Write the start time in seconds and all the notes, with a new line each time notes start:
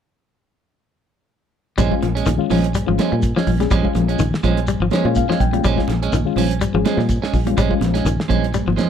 1.78 A#1 F3 G3 G#3 C#4, kick, closed hi-hat, shekere
1.90 G#3 C#4 F4, kick
2.02 A#1 F3, closed hi-hat, high conga, shekere
2.15 G#3 C#4, closed hi-hat
2.25 A#1 D#3 C#4 F4, closed hi-hat, high conga, shekere
2.38 G#3 C#4 F4
2.50 A#1 F3 G#3 C#4, open hi-hat, high conga, low conga, shekere
2.64 closed hi-hat
2.74 G3, closed hi-hat, shekere
2.86 G#1 F3 G#3 C#4 F4, low conga
2.99 F3 G#3 C#4, snare, closed hi-hat, high conga, shekere
3.12 A#2 G3
3.22 kick, closed hi-hat, shekere
3.36 F3 G#3 C#4, snare
3.46 A#1 C#4 F4, kick, open hi-hat, high conga, low conga, shekere
3.59 G3 G#3 C#4 G#4, snare, closed hi-hat, high conga
3.70 A#1 F3 G3 G#3 C#4, kick, closed hi-hat, shekere
3.83 G#3 C#4 F4, kick
3.95 A#1 F3, closed hi-hat, high conga, shekere
4.08 G#3 C#4, closed hi-hat
4.19 A#1 D#3, closed hi-hat, high conga, shekere
4.34 snare
4.43 A#1 F3 G#3 C#4, kick, closed hi-hat, high conga, low conga, shekere
4.57 closed hi-hat
4.67 G3, closed hi-hat, shekere
4.80 G#1 F3
4.91 F3 G#3 C#4 C#5, snare, closed hi-hat, high conga, shekere
5.05 A#2 G#3 C#4 F4, muted clean electric guitar stroke
5.15 F5, kick, closed hi-hat, high conga, shekere
5.29 F3 G#3 C#4, snare
5.40 A#1 G5, kick, closed hi-hat, high conga, low conga, shekere
5.52 G3 G#3 C#4 F4, closed hi-hat, high conga
5.64 A#1 F3 G3 G#3 C#4, kick, closed hi-hat, shekere
5.77 G#3 C#4 F4, kick, snare
5.88 A#1 F3, snare, closed hi-hat, high conga, shekere
6.02 G#3 C#4, closed hi-hat
6.12 A#1 D#3 C#4 F4, closed hi-hat, high conga, shekere
6.25 G#3 C#4 F4
6.36 A#1 F3 C#4, open hi-hat, high conga, low conga, shekere
6.51 closed hi-hat
6.61 G3, closed hi-hat, shekere
6.73 G#1 F3 G#3 C#4 G#4, low conga
6.85 F3 G#3 C#4, snare, closed hi-hat, high conga, shekere
6.97 A#2 G3, snare
7.09 kick, closed hi-hat, shekere
7.22 G#3 C#4, snare
7.32 A#1 C#4 F4, kick, open hi-hat, low conga, shekere
7.46 G3 G#3 C#4 F4, closed hi-hat, high conga
7.57 A#1 F3 G3 G#3 C#4, kick, closed hi-hat, shekere
7.69 G#3 C#4 F4, kick
7.81 A#1 F3, snare, closed hi-hat, high conga, shekere
7.94 G#3 C#4, snare, closed hi-hat
8.05 A#1 D#3, closed hi-hat, high conga, shekere
8.20 snare
8.28 A#1 F3 G#3 C#4, kick, closed hi-hat, high conga, low conga, shekere
8.44 closed hi-hat
8.54 G3, closed hi-hat, high conga, shekere
8.67 G#1 F3, high conga
8.76 F3 G#3 C#4, snare, closed hi-hat, high conga, shekere
8.86 low conga